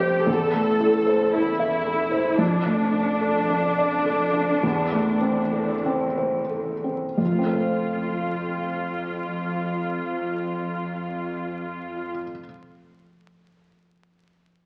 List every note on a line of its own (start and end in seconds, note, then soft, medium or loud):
0.00 0.23 F2 soft
0.00 0.24 F2 soft
0.00 0.29 G3 soft
0.00 0.28 G4 soft
0.00 0.30 G4 soft
0.00 0.30 C5 soft
0.00 0.30 G5 soft
0.26 2.35 E2 soft
0.26 2.39 E2 soft
0.26 1.34 A4 medium
0.53 0.96 A3 soft
0.80 1.23 E4 soft
1.06 1.49 C5 soft
1.34 2.38 E4 medium
1.34 1.76 A4 soft
1.59 2.02 E5 soft
1.86 2.28 A4 soft
2.12 2.39 C5 soft
2.38 4.59 F2 soft
2.38 5.86 D4 medium
2.65 3.10 A3 soft
2.93 3.37 D4 soft
3.21 3.66 A4 soft
3.50 3.95 D4 soft
3.78 4.24 D5 soft
4.06 4.52 A4 soft
4.34 4.63 D4 soft
4.63 7.15 E2 soft
4.63 6.94 E2 soft
4.91 5.41 A3 soft
5.21 5.72 C4 soft
5.52 6.04 A4 soft
5.86 6.39 C4 soft
6.18 6.73 C5 soft
6.50 7.05 A4 soft
6.84 7.18 C4 soft
7.18 12.09 F2 soft
7.18 12.11 F2 soft
7.18 12.11 F4 soft
7.25 12.16 F3 soft
7.32 12.23 A3 soft
7.39 12.30 C4 soft
7.46 12.38 A4 soft
7.53 12.45 C5 soft